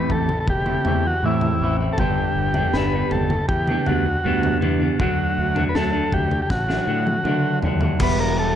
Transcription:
0.00 0.28 A2 medium
0.00 0.28 E3 medium
0.00 0.28 A3 medium
0.00 0.28 C4 medium
0.00 0.28 E4 medium
0.00 0.12 B4 loud
0.10 0.37 A1 medium
0.10 0.39 A4 medium
0.10 kick medium
0.10 floor tom medium
0.29 muted clean electric guitar stroke soft
0.29 mid tom medium
0.40 0.47 A4 medium
0.47 0.75 E1 medium
0.47 1.07 G4 medium
0.47 kick medium
0.47 mid tom medium
0.66 0.85 A3 medium
0.66 0.86 C4 medium
0.66 0.87 E4 medium
0.66 mid tom medium
0.85 1.13 E2 medium
0.85 1.04 E3 medium
0.85 1.04 A3 medium
0.85 1.04 C4 medium
0.85 1.04 E4 medium
0.85 floor tom medium
1.05 1.25 F#4 medium
1.05 muted clean electric guitar stroke medium
1.23 1.50 A2 medium
1.23 1.96 A2 medium
1.23 1.60 E3 medium
1.23 1.62 A3 medium
1.23 1.62 C4 medium
1.23 1.77 E4 medium
1.23 1.63 E4 medium
1.41 floor tom medium
1.61 1.88 A1 medium
1.61 1.96 E3 medium
1.61 1.82 A3 medium
1.61 1.81 C4 medium
1.61 1.79 E4 medium
1.80 1.98 A3 medium
1.80 1.97 C4 medium
1.80 1.96 E4 medium
1.93 1.99 A4 medium
1.98 2.26 G1 medium
1.98 2.73 G2 medium
1.98 2.74 D3 medium
1.98 2.56 G3 medium
1.98 2.55 B3 medium
1.98 2.54 D4 medium
1.98 2.76 G4 medium
1.98 kick loud
1.98 floor tom medium
2.35 2.63 G1 medium
2.54 2.74 G3 medium
2.54 2.75 B3 medium
2.54 2.77 D4 medium
2.54 floor tom medium
2.73 3.01 G1 medium
2.73 3.30 G2 medium
2.73 3.31 D3 medium
2.73 2.95 G3 medium
2.73 2.94 B3 medium
2.73 2.93 D4 loud
2.73 3.12 B4 medium
2.73 snare medium
2.93 3.31 G3 medium
2.93 3.31 B3 medium
2.93 3.30 D4 medium
3.11 3.39 G1 medium
3.11 3.46 A4 medium
3.11 floor tom medium
3.30 muted clean electric guitar stroke soft
3.30 mid tom medium
3.48 3.76 E2 medium
3.48 3.87 G4 medium
3.48 kick loud
3.67 3.87 B3 medium
3.67 3.88 D4 medium
3.67 mid tom medium
3.72 3.86 G3 medium
3.86 4.15 D2 medium
3.86 4.06 D3 medium
3.86 4.06 G3 medium
3.86 4.05 B3 medium
3.86 4.05 D4 medium
3.86 4.58 F#4 medium
3.86 floor tom medium
4.06 muted clean electric guitar stroke soft
4.24 4.53 D2 medium
4.24 4.97 G2 medium
4.24 4.59 D3 medium
4.24 4.60 G3 medium
4.24 4.61 B3 loud
4.24 4.62 D4 medium
4.43 floor tom medium
4.60 4.90 E2 medium
4.60 4.96 D3 medium
4.60 4.82 G3 medium
4.60 4.80 B3 medium
4.60 4.78 D4 medium
4.60 mid tom medium
4.80 4.98 G3 medium
4.80 4.98 B3 medium
4.80 4.97 D4 medium
4.99 5.28 D2 medium
4.99 5.74 D3 medium
4.99 5.57 F#3 medium
4.99 5.56 A3 loud
4.99 5.54 D4 medium
4.99 5.64 F#4 medium
4.99 kick loud
4.99 floor tom medium
5.38 5.65 D2 medium
5.55 5.74 F#3 medium
5.55 5.75 A3 medium
5.55 5.76 D4 medium
5.55 floor tom medium
5.69 5.75 B4 medium
5.75 6.03 D2 medium
5.75 6.31 D3 medium
5.75 5.95 F#3 medium
5.75 5.93 A3 medium
5.75 5.92 D4 loud
5.75 6.14 A4 medium
5.75 snare medium
5.93 6.32 F#3 medium
5.93 6.31 A3 medium
5.93 6.30 D4 medium
6.12 6.40 D2 medium
6.12 6.41 G4 medium
6.12 kick medium
6.12 floor tom medium
6.31 muted clean electric guitar stroke soft
6.31 mid tom medium
6.42 6.50 G4 medium
6.50 6.78 A1 medium
6.50 7.59 F#4 medium
6.50 kick medium
6.50 snare medium
6.68 6.86 F#3 medium
6.68 6.87 A3 medium
6.68 6.87 D4 medium
6.68 snare medium
6.86 7.15 A2 medium
6.86 7.23 D3 medium
6.86 7.06 F#3 medium
6.86 7.06 A3 medium
6.86 7.05 D4 medium
7.06 muted clean electric guitar stroke soft
7.06 high tom medium
7.24 7.61 D3 medium
7.24 7.53 D3 medium
7.24 7.63 F#3 medium
7.24 7.63 A3 medium
7.24 7.65 D4 medium
7.24 mid tom medium
7.62 7.91 D#2 medium
7.62 7.98 D3 medium
7.62 7.83 F#3 medium
7.62 7.82 A3 medium
7.62 7.80 D4 medium
7.62 floor tom medium
7.81 7.99 F#3 medium
7.81 7.99 A3 medium
7.81 7.98 D4 medium
7.81 floor tom medium
7.99 8.55 E1 medium
7.99 8.55 E3 medium
7.99 8.55 G3 medium
7.99 8.55 B3 medium
7.99 8.55 E4 medium
7.99 kick loud
7.99 crash loud
8.03 8.19 B4 medium
8.20 8.37 A#4 medium
8.39 8.55 A4 medium

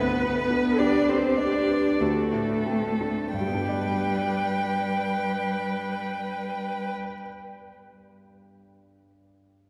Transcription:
0.00 1.97 D2 soft
0.00 0.39 D3 soft
0.00 0.80 B3 medium
0.00 0.80 B4 medium
0.00 0.81 B4 soft
0.22 0.67 B3 soft
0.50 0.97 D4 soft
0.78 1.11 D4 medium
0.78 1.26 G4 soft
0.78 2.02 G4 soft
0.78 1.10 D5 soft
1.08 1.40 C4 medium
1.08 1.57 B4 soft
1.08 1.38 C5 soft
1.37 2.01 D4 medium
1.37 1.87 D5 soft
1.37 2.03 D5 soft
1.69 2.00 B4 soft
2.00 3.30 D2 soft
2.00 3.34 A3 soft
2.00 2.67 F#4 soft
2.00 3.34 A4 soft
2.33 2.87 A2 soft
2.66 3.21 C4 soft
3.00 3.34 D4 soft
3.33 6.93 G2 soft
3.33 6.94 G3 soft
3.33 6.94 B4 soft
3.33 6.93 G5 soft
3.40 6.99 G3 soft
3.47 7.07 B3 soft
3.54 7.14 D4 soft
3.61 7.21 G4 soft
3.69 7.28 D5 soft

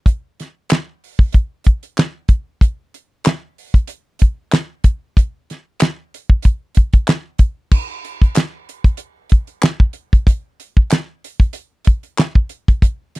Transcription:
0.06 kick medium
0.06 closed hi-hat medium
0.40 snare soft
0.40 closed hi-hat medium
0.69 snare loud
0.69 clap medium
0.69 closed hi-hat medium
1.04 open hi-hat soft
1.19 kick medium
1.32 kick medium
1.32 closed hi-hat medium
1.64 kick medium
1.64 closed hi-hat medium
1.83 closed hi-hat soft
1.97 snare medium
1.97 clap medium
1.97 closed hi-hat medium
2.28 kick medium
2.28 closed hi-hat medium
2.61 kick medium
2.61 closed hi-hat medium
2.94 closed hi-hat medium
3.24 snare loud
3.24 clap medium
3.24 closed hi-hat medium
3.58 open hi-hat soft
3.74 kick medium
3.74 closed hi-hat soft
3.88 closed hi-hat medium
4.19 kick medium
4.19 closed hi-hat medium
4.52 snare loud
4.52 clap medium
4.52 closed hi-hat medium
4.84 kick medium
4.84 closed hi-hat medium
5.17 kick medium
5.17 closed hi-hat medium
5.50 snare soft
5.50 closed hi-hat medium
5.80 snare loud
5.80 clap medium
5.80 closed hi-hat medium
6.14 closed hi-hat medium
6.30 kick medium
6.42 kick medium
6.42 closed hi-hat medium
6.75 kick medium
6.75 closed hi-hat medium
6.93 kick medium
6.93 closed hi-hat soft
7.07 snare medium
7.07 clap medium
7.07 closed hi-hat medium
7.38 kick medium
7.38 closed hi-hat medium
7.71 kick loud
7.71 crash medium
8.05 closed hi-hat medium
8.22 kick medium
8.22 closed hi-hat soft
8.35 snare loud
8.35 clap medium
8.35 closed hi-hat loud
8.69 closed hi-hat medium
8.84 kick loud
8.84 closed hi-hat soft
8.97 closed hi-hat medium
9.30 kick medium
9.30 closed hi-hat medium
9.47 closed hi-hat soft
9.62 snare loud
9.62 clap medium
9.62 closed hi-hat medium
9.80 kick medium
9.93 closed hi-hat medium
10.13 kick medium
10.13 closed hi-hat soft
10.27 kick loud
10.27 closed hi-hat medium
10.60 closed hi-hat medium
10.77 kick medium
10.90 snare loud
10.90 clap medium
10.90 closed hi-hat medium
11.24 closed hi-hat medium
11.40 kick medium
11.40 closed hi-hat soft
11.53 closed hi-hat medium
11.85 kick loud
11.85 closed hi-hat medium
12.03 closed hi-hat soft
12.18 snare loud
12.18 clap medium
12.18 closed hi-hat medium
12.35 kick medium
12.49 closed hi-hat medium
12.68 kick medium
12.68 closed hi-hat soft
12.82 kick loud
12.82 closed hi-hat medium
13.15 snare soft
13.15 closed hi-hat medium

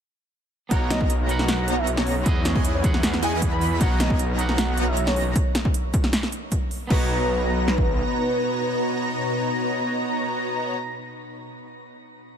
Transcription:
0.69 2.24 B1 medium
0.69 1.26 B3 medium
0.69 2.24 B3 medium
0.69 0.98 B3 medium
0.69 1.26 D#4 medium
0.69 2.24 D#4 medium
0.69 1.27 F#4 medium
0.69 0.98 F#4 medium
0.69 2.24 A#4 medium
0.69 1.27 A#4 medium
0.69 0.98 C#5 medium
0.69 0.98 D#5 medium
0.69 0.86 F#5 loud
0.69 0.98 A#5 medium
0.69 kick loud
0.69 closed hi-hat medium
0.73 1.28 C#5 loud
0.90 1.13 D#5 loud
0.90 snare medium
0.90 closed hi-hat medium
1.01 1.66 B3 medium
1.01 1.66 F#4 medium
1.01 1.66 C#5 medium
1.01 1.66 D#5 medium
1.01 1.66 A#5 medium
1.01 kick loud
1.10 closed hi-hat medium
1.27 2.23 B3 medium
1.27 2.23 D#4 medium
1.27 2.24 F#4 medium
1.27 2.24 A#4 medium
1.27 2.25 F#5 medium
1.27 closed hi-hat medium
1.39 snare medium
1.48 1.80 F#5 medium
1.48 snare loud
1.48 closed hi-hat medium
1.68 2.25 B3 medium
1.68 2.25 F#4 medium
1.68 2.25 C#5 medium
1.68 2.25 D#5 medium
1.68 2.25 A#5 loud
1.68 2.25 A#5 medium
1.68 closed hi-hat medium
1.78 1.93 E5 medium
1.87 closed hi-hat medium
1.97 2.12 C#5 medium
1.97 snare medium
2.07 open hi-hat medium
2.24 3.79 E2 medium
2.24 3.79 E3 medium
2.24 2.81 B3 loud
2.24 2.81 E4 medium
2.24 2.82 F#4 medium
2.24 3.79 F#4 medium
2.24 3.79 G#4 medium
2.24 2.82 G#4 medium
2.24 5.33 D#5 medium
2.24 kick loud
2.24 closed hi-hat medium
2.28 2.83 D#5 loud
2.45 2.68 C#5 loud
2.45 snare medium
2.45 closed hi-hat medium
2.55 2.73 E3 medium
2.55 2.73 E4 medium
2.55 2.73 D#5 medium
2.55 2.73 F#5 medium
2.55 2.73 G#5 medium
2.55 2.73 G#5 loud
2.55 kick loud
2.65 closed hi-hat medium
2.75 2.90 C#5 medium
2.82 3.77 B3 medium
2.82 3.78 E4 medium
2.82 3.79 F#4 medium
2.82 3.79 G#4 medium
2.82 kick loud
2.82 closed hi-hat medium
2.86 3.80 F#5 medium
2.94 snare medium
3.03 snare loud
3.03 closed hi-hat medium
3.14 snare medium
3.23 3.31 E3 medium
3.23 3.31 E4 medium
3.23 3.31 D#5 medium
3.23 3.31 F#5 medium
3.23 3.31 G#5 medium
3.23 3.45 G#5 loud
3.23 3.31 G#5 medium
3.23 closed hi-hat medium
3.33 3.78 E3 medium
3.33 3.79 E4 medium
3.33 3.79 D#5 medium
3.33 3.79 F#5 medium
3.33 3.78 B5 medium
3.33 3.79 B5 loud
3.42 kick medium
3.42 closed hi-hat medium
3.52 3.75 B5 loud
3.61 open hi-hat medium
3.79 5.34 B1 medium
3.79 4.36 B3 loud
3.79 4.08 B3 medium
3.79 5.34 B3 medium
3.79 4.36 D#4 medium
3.79 4.37 F#4 medium
3.79 4.08 F#4 medium
3.79 5.34 A#4 medium
3.79 4.37 A#4 medium
3.79 4.08 C#5 medium
3.79 4.08 D#5 medium
3.79 3.96 F#5 loud
3.79 4.08 A#5 medium
3.79 kick loud
3.79 closed hi-hat medium
3.83 4.38 C#5 loud
4.00 4.23 D#5 loud
4.00 snare medium
4.00 closed hi-hat medium
4.10 4.75 B3 medium
4.10 4.75 F#4 medium
4.10 4.75 C#5 medium
4.10 4.75 D#5 medium
4.10 4.75 A#5 medium
4.10 kick loud
4.19 closed hi-hat medium
4.37 5.32 B3 medium
4.37 5.33 D#4 medium
4.37 5.33 F#4 medium
4.37 5.34 A#4 medium
4.37 closed hi-hat medium
4.41 5.34 F#5 medium
4.49 snare medium
4.58 4.89 F#5 medium
4.58 snare loud
4.58 closed hi-hat medium
4.77 5.34 B3 medium
4.77 5.34 F#4 medium
4.77 5.34 C#5 medium
4.77 5.34 D#5 medium
4.77 5.34 A#5 medium
4.77 closed hi-hat medium
4.88 5.03 E5 medium
4.97 closed hi-hat medium
5.07 5.22 C#5 medium
5.07 snare medium
5.16 open hi-hat medium
5.36 kick loud
5.36 closed hi-hat medium
5.55 snare medium
5.55 closed hi-hat medium
5.65 kick loud
5.74 closed hi-hat medium
5.94 kick loud
5.94 closed hi-hat medium
6.04 snare medium
6.13 snare loud
6.13 closed hi-hat medium
6.23 snare medium
6.32 closed hi-hat medium
6.52 kick medium
6.52 closed hi-hat medium
6.71 open hi-hat medium
6.87 8.03 B1 loud
6.87 10.76 B2 medium
6.87 11.45 B3 medium
6.87 10.76 B3 medium
6.87 11.45 D#4 medium
6.87 10.76 D#4 medium
6.87 11.46 F#4 medium
6.87 10.76 F#4 medium
6.87 10.76 B4 loud
6.87 10.76 C#5 medium
6.87 10.76 D#5 medium
6.87 10.76 A#5 loud
6.87 10.76 A#5 medium
6.87 kick loud
6.87 crash medium
6.92 11.47 B4 medium
6.92 11.48 C#5 loud
7.68 snare medium
7.78 kick medium

